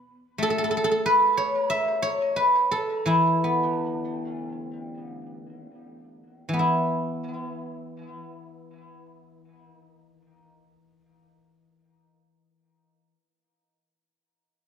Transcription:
0.38 A3
0.43 A4
0.50 A4
0.58 A4
0.64 A4
0.71 A4
0.77 A4
0.84 A4
0.91 A4
1.06 B4
1.37 C#5
1.70 E5
2.02 C#5
2.36 B4
2.71 A4
3.06 E3 E4
3.44 B3
4.28 D#4
4.49 D4
4.71 C#4
6.49 E3
6.53 B3
6.59 E4

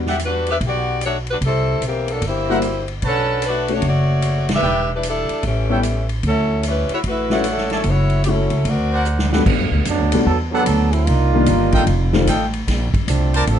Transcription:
Already playing: E2
0.06 G4 D5 E5 F#5, snare
0.19 hi-hat pedal, ride
0.24 G3 D4 F#4 B4
0.47 E5, ride
0.51 D4 G4 B4
0.60 B1, kick, ride
0.65 B3 F#4 G4 D5
1.01 A3 D4 F#4 C#5, hi-hat pedal, ride
1.27 D4 F#4 B4, ride
1.31 G3
1.41 C2 G3 C4 E4 A4, kick, ride
1.81 B1, hi-hat pedal, ride
1.86 E3 A#3 C4 G4
2.08 F#3 A#3 D4 A4, ride
2.21 G1, kick, ride
2.26 A#3 E4 G4 C5
2.49 G3 A#3 E4 F#4 A#4 C5 E5 F#5
2.62 hi-hat pedal, ride
2.88 ride
3.02 B1 B4 C#5 F#5 A5, kick, ride
3.06 F#3 C#4 D4 A4
3.42 hi-hat pedal, ride
3.46 A3 D4 F#4 B4
3.68 A3 C#4 D4 F#4, ride
3.72 A3 D4 F#4 C#5
3.82 F#1, kick, ride
3.87 A3 F#4 C#5 D5
4.22 hi-hat pedal, ride
4.49 snare, ride
4.53 D4 G4 B4 E5
4.63 E1 B4 D5 E5 G5
4.94 G3 D4 E4 B4
5.03 hi-hat pedal, ride
5.07 G3 D4 E4 A4
5.29 muted upright bass stroke, ride
5.43 A1 A3 C#4 G4, kick, ride
5.47 E3
5.69 G3 B3 C#4 E4 A4 C#5 E5 G5
5.83 hi-hat pedal, ride
6.09 ride
6.23 D2 F#3 E4 A4, kick, ride
6.28 C#4
6.63 C#4, hi-hat pedal, ride
6.67 G3 E4 B4
6.89 A3 F#4 C#5, ride
6.93 E4
7.03 A1, kick, ride
7.08 A3 E4 F#4 B4
7.30 F#3 A3 C#4 E4 C#5 D5 E5 F#5, snare
7.44 hi-hat pedal, ride
7.48 F#3 C#4 E4 A4
7.58 snare
7.70 C#5 D5 E5 A5, snare, ride
7.84 F#1, kick, ride
7.89 A3 E4 F#4 C#5
8.10 ride
8.24 F#3 A3 C#4 G4, hi-hat pedal, ride
8.28 F#3 C#4 E4 A4
8.50 C#2, ride
8.65 D2 F#4, kick, ride
8.69 C4 A#4 D5
8.92 A#4 C5 D5 F#5
9.05 hi-hat pedal
9.19 snare
9.33 G2 A3 B3 D4 F#4 G4 A4 B4 F#5, snare
9.46 G2, kick, crash
9.59 F#2
9.71 D2
9.85 F#2 F#3 A3 B3 D4, kick, hi-hat pedal, ride
9.99 D2
10.12 B1 G3 A3 B3 D4 F#4, ride
10.26 E2 F#3 B3 D4 A4, kick
10.51 F#3 B3 D4 G4 A4 B4 F#5
10.66 D2, kick, hi-hat pedal, ride
10.92 F#3 A3 C4 E4, ride
11.05 C2 A#3 D4 D#4 F4, kick, ride
11.33 D#3 G3 A#3 D4 F4
11.46 G1, kick, hi-hat pedal, ride
11.72 A4 D#5 F5 G5, kick, ride
11.87 F1, kick, ride
12.13 D#3 G3 A3 C4 F4, snare
12.27 A1 A4 D#5 F5 G5, kick, hi-hat pedal, ride
12.53 ride
12.67 A#1, kick, snare, ride
12.93 muted upright bass stroke, kick, ride
13.07 C2 F3 A3 C4 D4, kick, hi-hat pedal, ride
13.34 A#4 C5 D5 A5, ride
13.47 A1 F3 C4 D4 A4, kick, ride

